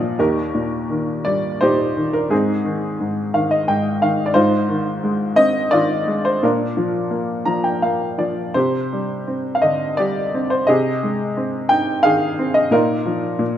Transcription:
0.00 0.21 A#2 medium
0.00 0.21 F3 soft
0.00 0.16 D5 soft
0.00 0.21 D#5 medium
0.00 0.21 F5 medium
0.00 0.21 G5 medium
0.00 0.21 G#5 medium
0.19 2.27 D#2 medium
0.19 1.22 D#4 soft
0.19 1.22 G4 soft
0.19 1.23 A#4 medium
0.54 1.60 A#2 soft
0.90 1.95 D#3 soft
1.25 2.28 G3 soft
1.25 1.62 D5 medium
1.61 2.29 A#2 soft
1.61 2.28 D#4 medium
1.61 2.28 G4 soft
1.61 2.10 C5 medium
1.96 2.30 D#3 soft
2.13 2.32 A#4 medium
2.30 2.99 G#2 medium
2.30 3.30 C4 soft
2.30 3.30 D#4 soft
2.30 3.29 G#4 medium
2.65 3.32 D#3 soft
3.00 3.66 G#2 soft
3.34 4.00 D#3 soft
3.34 3.50 F5 medium
3.51 3.66 D#5 medium
3.68 4.33 G#2 soft
3.68 3.99 G5 medium
4.02 4.34 D#3 soft
4.02 4.33 F5 medium
4.26 4.34 D5 medium
4.34 6.39 G#2 medium
4.34 5.33 D#4 medium
4.34 5.33 F4 medium
4.34 5.33 C5 medium
4.69 5.70 D#3 soft
5.04 6.06 G#3 soft
5.36 6.39 C4 medium
5.36 5.73 D#5 loud
5.71 6.40 D#3 soft
5.71 6.39 F4 medium
5.71 6.21 D5 medium
6.07 6.41 G#3 soft
6.25 6.43 C5 medium
6.43 8.51 A#2 medium
6.43 7.44 D4 soft
6.43 7.44 F4 soft
6.43 7.43 A#4 medium
6.77 7.44 F3 soft
7.11 7.81 A#3 soft
7.45 8.17 F3 soft
7.45 7.63 A#5 medium
7.64 7.81 G5 medium
7.82 8.53 A#3 soft
7.82 8.16 F5 medium
8.18 8.54 F3 soft
8.18 8.53 D5 soft
8.54 10.64 C3 medium
8.54 9.59 G4 soft
8.54 9.58 C5 medium
8.93 9.97 G3 soft
9.27 10.33 C4 soft
9.55 9.62 F5 medium
9.62 10.64 D3 soft
9.62 9.99 D#5 medium
9.97 10.66 G3 soft
9.97 10.64 G4 soft
9.97 10.52 D5 medium
10.34 10.67 C4 soft
10.50 10.68 C5 medium
10.67 12.69 C3 medium
10.67 11.67 G4 medium
10.67 11.67 G#4 medium
10.67 11.66 D#5 medium
11.03 12.35 G#3 soft
11.37 12.37 C4 soft
11.69 12.70 D#4 soft
11.69 12.05 G5 medium
12.03 12.70 D#3 soft
12.03 12.69 G#4 medium
12.03 12.51 F5 medium
12.39 12.72 C4 soft
12.54 12.71 D#5 medium
12.71 13.37 A#2 medium
12.71 13.58 D#4 medium
12.71 13.58 F4 medium
12.71 13.58 A#4 medium
13.06 13.39 F3 soft
13.39 13.58 A#2 medium

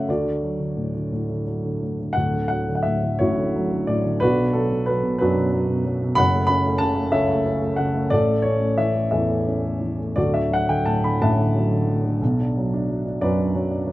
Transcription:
0.00 0.10 A3 soft
0.00 0.10 F#5 medium
0.08 2.11 D2 medium
0.08 1.42 F#4 soft
0.08 1.43 A4 soft
0.08 1.42 D5 medium
0.25 0.58 D3 soft
0.43 1.45 F#3 soft
0.60 0.93 D3 soft
0.77 1.11 A2 soft
0.95 1.29 D3 soft
1.12 1.80 A2 medium
1.30 1.63 D3 soft
1.46 2.13 F#3 soft
1.65 1.99 D3 soft
1.82 2.15 A2 soft
2.00 2.16 D3 soft
2.13 4.18 D1 medium
2.13 4.18 D2 medium
2.13 3.15 A4 medium
2.13 2.46 F#5 medium
2.33 2.67 D3 soft
2.48 3.54 F#3 soft
2.48 2.74 F#5 medium
2.68 3.02 D3 soft
2.75 2.83 F#5 medium
2.83 3.19 A2 soft
2.83 3.19 E5 medium
3.03 3.37 D3 soft
3.19 4.18 A1 medium
3.19 3.87 A2 medium
3.19 4.18 E4 medium
3.19 4.18 F#4 medium
3.19 3.90 C#5 medium
3.38 3.71 D3 medium
3.56 4.20 F#3 medium
3.72 4.03 D3 soft
3.87 4.21 A2 medium
3.87 4.22 D5 medium
4.05 4.21 D3 medium
4.20 6.15 B1 medium
4.20 4.37 B2 medium
4.20 5.17 D4 medium
4.20 5.17 F#4 medium
4.20 4.55 B4 loud
4.39 4.71 B2 medium
4.53 4.87 F#3 medium
4.53 4.88 A4 medium
4.72 5.02 B2 medium
4.86 5.20 F#3 medium
4.86 5.17 B4 medium
5.03 5.35 B2 medium
5.19 6.14 F#2 medium
5.19 5.51 F#3 medium
5.19 6.14 D4 medium
5.19 6.14 F#4 medium
5.19 5.89 B4 medium
5.37 5.66 B2 medium
5.53 5.83 F#3 medium
5.68 6.00 B2 medium
5.85 6.16 F#3 medium
6.02 6.17 B2 medium
6.15 8.08 F#1 medium
6.15 8.08 F#2 medium
6.15 7.11 F#5 medium
6.15 6.45 B5 loud
6.34 6.64 A3 medium
6.47 7.44 C#4 medium
6.47 6.82 B5 loud
6.66 6.95 A3 medium
6.78 7.10 C#3 medium
6.78 7.10 A5 loud
6.97 7.28 A3 medium
7.12 8.07 C#2 medium
7.12 7.77 C#3 medium
7.12 8.08 A4 medium
7.12 8.08 C#5 medium
7.12 7.80 E5 medium
7.29 7.61 A3 medium
7.46 8.10 C#4 medium
7.62 7.93 A3 medium
7.76 8.11 C#3 medium
7.76 8.12 F#5 medium
7.94 8.11 A3 medium
8.10 10.12 A1 medium
8.10 10.12 A2 medium
8.10 9.09 A4 medium
8.10 8.42 D5 loud
8.28 8.60 A3 soft
8.42 9.46 C#4 soft
8.42 8.78 C#5 medium
8.61 8.94 A3 medium
8.77 9.11 E3 soft
8.77 9.10 E5 medium
8.95 9.28 A3 soft
9.11 10.13 E2 medium
9.11 9.80 E3 medium
9.11 10.12 A4 medium
9.11 10.13 C#5 medium
9.11 9.86 E5 medium
9.29 9.62 A3 soft
9.47 10.15 C#4 soft
9.63 9.98 A3 soft
9.81 10.16 E3 soft
10.00 10.17 A3 soft
10.16 12.17 D1 medium
10.16 12.17 D2 medium
10.16 11.16 F#4 medium
10.16 11.16 A4 medium
10.16 10.34 D5 medium
10.34 10.68 D3 soft
10.34 10.50 E5 medium
10.51 11.54 F#3 medium
10.51 10.70 F#5 medium
10.69 11.04 D3 soft
10.69 10.87 G5 medium
10.86 11.20 A2 medium
10.86 11.03 A5 medium
11.04 11.37 D3 medium
11.04 11.19 B5 medium
11.22 12.18 A1 medium
11.22 11.87 A2 medium
11.22 13.19 E5 medium
11.22 13.18 F#5 medium
11.22 13.28 A5 medium
11.39 11.71 D3 soft
11.56 12.20 F#3 medium
11.73 12.04 D3 soft
11.88 12.20 A2 soft
12.05 12.21 D3 medium
12.22 13.92 B1 medium
12.22 13.92 B2 medium
12.40 12.72 D4 soft
12.57 12.88 F#3 medium
12.74 13.04 D4 medium
12.89 13.20 F#3 medium
13.05 13.37 D4 medium
13.21 13.92 F#2 medium
13.21 13.54 F#3 medium
13.21 13.92 F#4 medium
13.21 13.92 B4 medium
13.21 13.91 D5 medium
13.39 13.70 D4 medium
13.55 13.86 F#3 medium
13.71 13.92 D4 medium
13.87 13.92 F#3 medium

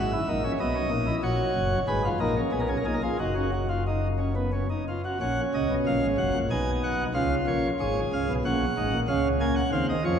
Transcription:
0.00 0.17 G#1 medium
0.00 0.17 G#2 medium
0.00 0.11 F#4 medium
0.00 0.52 E5 medium
0.13 0.27 E4 medium
0.29 0.49 A#1 medium
0.29 0.49 A#2 medium
0.29 0.42 D#4 medium
0.44 0.58 C#4 medium
0.60 0.80 B1 medium
0.60 0.80 B2 medium
0.60 0.74 B3 medium
0.60 1.15 D#5 medium
0.75 0.90 C#4 medium
0.91 1.12 A#1 medium
0.91 1.11 A#2 medium
0.91 1.05 D#4 medium
1.06 1.21 E4 medium
1.23 1.44 A#1 medium
1.23 1.44 A#2 medium
1.23 1.79 F#4 medium
1.23 1.79 C#5 medium
1.55 1.76 F#1 medium
1.55 1.76 F#2 medium
1.88 2.08 G#1 medium
1.88 2.09 G#2 medium
1.88 2.02 G#4 medium
1.88 2.08 B4 medium
2.05 2.19 F4 medium
2.20 2.41 A#1 medium
2.20 2.41 A#2 medium
2.20 2.34 D#4 medium
2.20 2.41 A#4 medium
2.37 2.51 C#4 medium
2.52 2.73 B1 medium
2.52 2.73 B2 medium
2.52 2.67 B3 medium
2.52 2.61 G#4 medium
2.60 2.69 A#4 soft
2.69 2.83 C#4 medium
2.69 2.77 G#4 soft
2.78 2.86 A#4 soft
2.85 3.07 A#1 medium
2.85 3.06 A#2 medium
2.85 3.00 D#4 medium
2.85 2.94 G#4 soft
2.94 3.02 A#4 medium
3.02 3.17 F4 medium
3.02 3.17 G#4 medium
3.19 4.63 F#1 medium
3.19 4.63 F#2 medium
3.19 3.34 D#4 medium
3.19 3.51 F#4 medium
3.36 3.50 C#4 medium
3.53 3.67 F#4 medium
3.69 3.84 F4 medium
3.87 4.08 D#4 medium
4.19 4.34 C#4 medium
4.35 4.50 B3 soft
4.53 4.67 C#4 medium
4.70 4.84 D#4 soft
4.88 5.02 F4 medium
5.05 5.18 F#4 soft
5.20 5.41 A#1 medium
5.20 5.40 A#2 medium
5.20 6.33 C#4 medium
5.20 5.41 F#5 medium
5.54 5.68 C#2 medium
5.54 5.68 C#3 medium
5.54 5.74 D#5 medium
5.70 5.84 B1 medium
5.70 5.84 B2 medium
5.87 6.00 A#1 medium
5.87 6.00 A#2 medium
5.87 6.06 F5 medium
6.02 6.16 G#1 soft
6.02 6.16 G#2 medium
6.18 6.32 F#1 medium
6.18 6.32 F#2 medium
6.18 6.38 F#5 medium
6.34 6.48 A#1 medium
6.34 6.48 A#2 medium
6.51 7.06 B1 medium
6.51 7.06 B2 medium
6.51 7.06 D#4 medium
6.51 6.71 G#5 medium
6.84 7.03 F#5 medium
7.14 7.35 C#2 medium
7.14 7.35 C#3 medium
7.14 7.70 F4 medium
7.14 7.35 F5 medium
7.47 7.67 A#1 medium
7.47 7.67 A#2 medium
7.47 7.67 C#5 medium
7.80 8.00 G#1 medium
7.80 8.00 G#2 medium
7.80 8.35 G#4 medium
7.80 8.00 C#5 medium
8.13 8.27 C#2 medium
8.13 8.26 C#3 medium
8.13 8.33 F5 medium
8.29 8.42 B1 medium
8.29 8.42 B2 medium
8.45 8.65 A#1 medium
8.45 8.64 A#2 medium
8.45 8.64 C#4 medium
8.45 9.00 F#5 medium
8.77 8.91 G#1 medium
8.77 8.91 G#2 medium
8.77 8.97 D#4 medium
8.93 9.06 A#1 medium
8.93 9.07 A#2 medium
9.08 9.63 C#2 medium
9.08 9.64 C#3 medium
9.08 9.28 C#4 medium
9.08 9.28 F5 medium
9.41 9.60 A#3 medium
9.41 9.54 G#5 medium
9.56 9.70 F#5 medium
9.72 9.92 D#2 medium
9.72 9.92 D#3 medium
9.72 9.92 C4 medium
9.72 9.86 F5 medium
9.89 10.03 D#5 medium
10.05 10.19 F2 medium
10.05 10.19 F3 medium
10.05 10.19 C#4 medium
10.05 10.19 C#5 medium

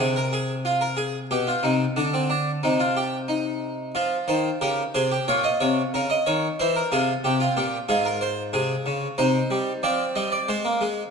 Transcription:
0.00 1.26 C3 medium
0.00 0.15 G#4 medium
0.16 0.32 A#4 medium
0.33 0.53 G#4 medium
0.65 0.81 F4 medium
0.81 0.97 A#4 medium
0.97 1.17 G#4 medium
1.31 1.51 B2 medium
1.31 1.47 G4 medium
1.47 1.63 F4 medium
1.63 1.83 C3 medium
1.63 1.84 D#4 medium
1.96 2.60 D3 medium
1.96 2.12 D4 medium
2.14 2.29 C4 medium
2.30 2.50 D4 medium
2.63 3.91 C3 medium
2.63 2.79 D#4 medium
2.80 2.95 F4 medium
2.97 3.16 G4 medium
3.28 3.92 D#4 medium
3.95 4.15 F3 medium
3.95 4.59 F4 medium
4.28 4.48 D#3 medium
4.28 4.48 C5 medium
4.61 4.82 C#3 medium
4.61 4.82 G4 medium
4.61 4.81 A#4 medium
4.94 5.15 C3 medium
4.94 5.10 G#4 medium
4.94 5.15 C5 medium
5.12 5.27 G4 medium
5.28 5.48 A#2 medium
5.28 6.55 F4 medium
5.28 5.43 C#5 medium
5.44 5.59 D#5 medium
5.60 5.81 C3 medium
5.60 5.80 C#5 medium
5.94 6.14 C#3 medium
5.94 6.09 A#4 medium
6.10 6.25 D#5 medium
6.26 6.46 D#3 medium
6.26 6.46 C#5 medium
6.60 6.79 E3 medium
6.60 6.79 E4 medium
6.60 6.75 C5 medium
6.76 6.91 A#4 medium
6.92 7.12 C3 medium
6.92 7.12 F4 medium
6.92 7.12 G#4 medium
7.24 7.44 C3 medium
7.24 7.56 G4 medium
7.40 7.56 F4 medium
7.57 7.77 A#2 medium
7.57 7.77 G4 medium
7.89 8.52 G#2 medium
7.89 9.14 F4 medium
7.89 8.04 G#4 medium
8.05 8.21 A#4 medium
8.21 8.41 C5 medium
8.53 8.73 C3 medium
8.53 9.16 G#4 medium
8.86 9.06 C#3 medium
9.18 9.38 C3 medium
9.18 9.81 D#4 medium
9.18 9.81 C5 medium
9.51 9.71 G3 medium
9.83 10.04 F3 medium
9.83 11.10 C4 medium
9.83 10.03 D5 medium
10.15 10.36 G3 medium
10.15 10.32 D#5 medium
10.32 10.48 D5 medium
10.48 10.65 G#3 medium
10.48 11.11 C5 medium
10.65 10.81 A#3 medium
10.81 11.01 G#3 medium

